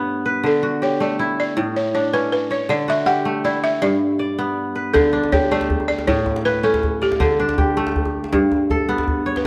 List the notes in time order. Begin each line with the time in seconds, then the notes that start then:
Already playing: G2 A3 B3 E4 C#5
0.26 B4
0.44 D3 A4
0.63 F#4
0.82 G4 C#5
1.00 A3 D5
1.19 E4
1.40 D5
1.57 A2
1.76 C#5
1.95 D4 C#5
2.13 C#4 B4
2.32 B4
2.50 C#5
2.69 D3 D5
2.88 F#4 E5
3.06 G4 F#5
3.25 A3
3.45 E4 D5
3.64 E5
3.82 G2 D5
4.19 D5
4.38 B3
4.75 B4
4.94 D3 A4, djembe tone, djembe bass
5.04 djembe slap
5.13 D4
5.23 djembe slap
5.32 G4 C#5, djembe slap, djembe tone, djembe bass
5.51 A3 D5
5.61 djembe slap
5.70 djembe bass
5.80 djembe slap, djembe tone
5.88 D5
5.99 djembe slap
6.07 A2 C#5, djembe bass
6.26 djembe tone
6.36 djembe slap
6.45 B4
6.63 C#4 A4
6.74 djembe slap, djembe tone
6.83 djembe bass
7.02 G4 D5
7.12 djembe slap
7.20 D3 A4, djembe tone, djembe bass
7.31 djembe slap
7.40 D4
7.49 djembe slap
7.58 G4, djembe slap, djembe tone, djembe bass
7.77 A3
7.87 djembe slap
7.96 djembe bass
8.05 djembe slap, djembe tone
8.24 djembe slap
8.33 G2, djembe bass
8.52 djembe tone
8.70 A4, djembe bass
8.89 B3
8.98 djembe slap, djembe tone
9.08 djembe bass
9.26 C#5
9.36 B4, djembe slap